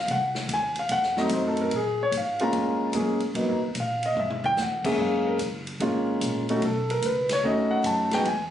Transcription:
0.08 upright bass C2, grand piano F#5, kick, ride
0.35 snare
0.48 upright bass D#2, kick, hi-hat pedal, ride
0.54 grand piano G#5
0.75 grand piano F5, ride
0.89 upright bass F2, grand piano F#5, kick, ride
1.03 snare
1.17 grand piano F#3 A3 C4 D#4 D#5, snare
1.29 upright bass F#2, kick, hi-hat pedal, ride
1.33 grand piano C5
1.48 grand piano A4
1.57 ride
1.62 grand piano A#4
1.71 upright bass A#2, kick, ride
1.76 grand piano G#4
2.03 grand piano C#5
2.11 upright bass G#2, kick, hi-hat pedal, ride
2.17 grand piano F5
2.39 grand piano G#3 A#3 C#4 F4, ride
2.43 grand piano A#5
2.53 upright bass F2, kick, ride
2.93 upright bass F#2, grand piano G#3 A#3 C#4 G#4, kick, hi-hat pedal, ride
3.20 muted upright bass stroke, ride
3.34 upright bass G#2, grand piano F#3 A#3 B3 D#4, kick, ride
3.48 upright bass F#2
3.61 upright bass D#2
3.75 upright bass A#2, kick, hi-hat pedal, ride
3.80 grand piano F5
4.03 grand piano D#5, ride
4.16 upright bass G2, grand piano E5, mid tom
4.30 mid tom
4.44 grand piano G5, floor tom
4.57 upright bass E2, snare, hi-hat pedal
4.61 grand piano F#5
4.85 grand piano G#3 A#3 C#4 G#4 E5, kick, crash
4.98 upright bass F#2, grand piano F5, kick
5.27 grand piano A#4
5.39 upright bass F#1, kick, hi-hat pedal, ride
5.67 ride
5.80 upright bass G#1, grand piano G#3 A#3 C#4 F4, kick, ride
6.21 upright bass A#1, kick, hi-hat pedal, ride
6.49 grand piano A3 C#4 D#4 F#4, ride
6.62 upright bass B1, grand piano A4, kick, ride
6.90 grand piano A#4, ride
7.02 upright bass C#2, grand piano B4, kick, hi-hat pedal, ride
7.29 grand piano C#5, snare, ride
7.42 upright bass D#2, grand piano A3 C#4 D#4 F#4 D#5, kick
7.71 grand piano F#5
7.83 upright bass F#2, grand piano A5, kick, hi-hat pedal, ride
8.11 grand piano G#3 B3 D#4 F#4 G5, snare, ride
8.25 upright bass E2, grand piano G#5, kick, ride

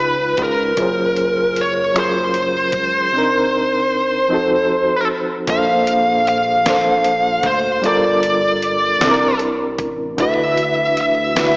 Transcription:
Already playing: analog synth bass C#2, reed electric piano C#3 C#4 D#4 F4 B4, lead electric guitar B4
0.37 analog synth bass C#2, kick, closed hi-hat
0.43 lead electric guitar A#4
0.76 analog synth bass F#1, reed electric piano F#3 C#4 F4 G#4, kick, closed hi-hat
0.80 reed electric piano A#4 C5
1.16 closed hi-hat
1.56 closed hi-hat
1.61 lead electric guitar C#5
1.94 reed electric piano F#3 C#4 F4 G#4, finger snap, closed hi-hat
1.98 reed electric piano A#4 C5, lead electric guitar C5
2.34 closed hi-hat
2.72 analog synth bass C#2, kick, closed hi-hat
3.12 reed electric piano C3 C4 D4
3.17 reed electric piano D#4 A#4
4.29 reed electric piano F3 C4 D#4
4.33 reed electric piano F#4 A4
5.47 analog synth bass A#1, reed electric piano A#2 A#3 C#4 A4, lead electric guitar F5, kick, closed hi-hat
5.52 reed electric piano C5
5.56 reed electric piano D4
5.87 closed hi-hat
6.27 lead electric guitar F5, closed hi-hat
6.64 reed electric piano A#2 A#3 D4, snare, closed hi-hat
6.69 reed electric piano A4 C5
7.04 closed hi-hat
7.43 analog synth bass D2, lead electric guitar C5, kick, closed hi-hat
7.82 analog synth bass G1, reed electric piano G3 D4 F4 A4, closed hi-hat
7.87 reed electric piano A#4, lead electric guitar D5
8.23 closed hi-hat
8.62 closed hi-hat
8.99 reed electric piano C3 C4 D4, snare, closed hi-hat
9.03 analog synth bass C2, reed electric piano E4 A4
9.11 reed electric piano A#4
9.39 closed hi-hat
9.78 analog synth bass A1, kick, closed hi-hat
10.17 analog synth bass D2, reed electric piano D3 D4 E4, lead electric guitar E5, kick, closed hi-hat
10.21 reed electric piano F#4 B4
10.57 closed hi-hat
10.97 closed hi-hat
11.01 lead electric guitar E5
11.35 reed electric piano D3 D4 E4, snare, closed hi-hat
11.39 reed electric piano F#4 B4

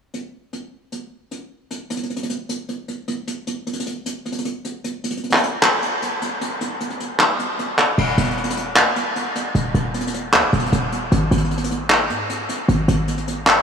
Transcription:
0.14 closed hi-hat
0.53 closed hi-hat
0.92 closed hi-hat
1.31 closed hi-hat
1.71 closed hi-hat
1.90 closed hi-hat
1.97 closed hi-hat
2.03 closed hi-hat
2.10 closed hi-hat
2.16 closed hi-hat
2.23 closed hi-hat
2.30 closed hi-hat
2.49 closed hi-hat
2.69 closed hi-hat
2.88 closed hi-hat
3.08 closed hi-hat
3.27 closed hi-hat
3.47 closed hi-hat
3.67 closed hi-hat
3.73 closed hi-hat
3.80 closed hi-hat
3.86 closed hi-hat
4.06 closed hi-hat
4.26 closed hi-hat
4.32 closed hi-hat
4.39 closed hi-hat
4.45 closed hi-hat
4.65 closed hi-hat
4.84 closed hi-hat
5.04 closed hi-hat
5.10 closed hi-hat
5.17 closed hi-hat
5.24 closed hi-hat
5.30 clap, closed hi-hat
5.37 closed hi-hat
5.43 closed hi-hat
5.63 clap, closed hi-hat
5.82 closed hi-hat
6.02 closed hi-hat
6.22 closed hi-hat
6.41 closed hi-hat
6.61 closed hi-hat
6.80 closed hi-hat
6.90 closed hi-hat
7.00 closed hi-hat
7.20 clap, closed hi-hat
7.39 closed hi-hat
7.59 closed hi-hat
7.78 clap, closed hi-hat
7.98 808-style bass D#1, crash
8.18 808-style bass D#1, closed hi-hat
8.24 closed hi-hat
8.31 closed hi-hat
8.37 closed hi-hat
8.44 closed hi-hat
8.50 closed hi-hat
8.57 closed hi-hat
8.76 clap, closed hi-hat
8.96 closed hi-hat
9.16 closed hi-hat
9.35 closed hi-hat
9.55 808-style bass D#1, closed hi-hat
9.74 808-style bass D#1, closed hi-hat
9.94 closed hi-hat
10.01 closed hi-hat
10.07 closed hi-hat
10.14 closed hi-hat
10.33 808-style bass D#2, clap, closed hi-hat
10.43 808-style bass D#1
10.53 808-style bass D#1, closed hi-hat
10.59 closed hi-hat
10.66 closed hi-hat
10.73 808-style bass D#1, closed hi-hat
10.92 closed hi-hat
11.12 808-style bass G#1, closed hi-hat
11.31 808-style bass G#1, closed hi-hat
11.38 closed hi-hat
11.44 closed hi-hat
11.51 closed hi-hat
11.57 closed hi-hat
11.64 closed hi-hat
11.71 closed hi-hat
11.90 clap, closed hi-hat
12.10 808-style bass G#2, closed hi-hat
12.29 closed hi-hat
12.49 closed hi-hat
12.69 808-style bass G#1, closed hi-hat
12.88 808-style bass G#1, closed hi-hat
13.08 closed hi-hat
13.18 closed hi-hat
13.28 closed hi-hat
13.47 clap, closed hi-hat

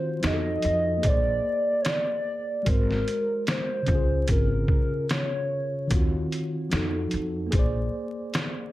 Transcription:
Already playing: tine electric piano D#3 C4 F4 F#4, soft synth lead C5
0.21 upright bass F2, tine electric piano F3 D#4, snare, closed hi-hat
0.25 tine electric piano F#4 G#4, soft synth lead D#5
0.33 tine electric piano A4
0.62 upright bass F2, closed hi-hat
0.98 tine electric piano A#3
1.02 upright bass A#1, tine electric piano G#4, kick, closed hi-hat
1.06 tine electric piano C5, soft synth lead D5
1.10 tine electric piano D5
1.82 soft synth lead C#5, closed hi-hat
1.86 soft synth lead D5, snare
2.63 upright bass G#1, tine electric piano G#3 F#4, kick, closed hi-hat
2.67 tine electric piano A#4 C5, soft synth lead A#4
2.91 snare
3.08 closed hi-hat
3.47 soft synth lead C5, snare, closed hi-hat
3.83 tine electric piano C#3 C#4, closed hi-hat
3.88 upright bass C#2, tine electric piano F4, kick
3.95 tine electric piano G#4
4.28 upright bass G#1, soft synth lead A#4, kick, closed hi-hat
4.68 kick
5.09 soft synth lead C#5, snare, closed hi-hat
5.87 upright bass D#2, tine electric piano D#3 C4, kick, closed hi-hat
5.92 tine electric piano F4 F#4
6.32 closed hi-hat
6.70 upright bass F2, tine electric piano F3 D#4, snare, closed hi-hat
6.74 tine electric piano F#4 A4
7.11 upright bass F2, closed hi-hat
7.47 tine electric piano A#3
7.51 upright bass A#1, tine electric piano G#4, kick, closed hi-hat
7.55 tine electric piano C5 D5
8.34 snare, closed hi-hat

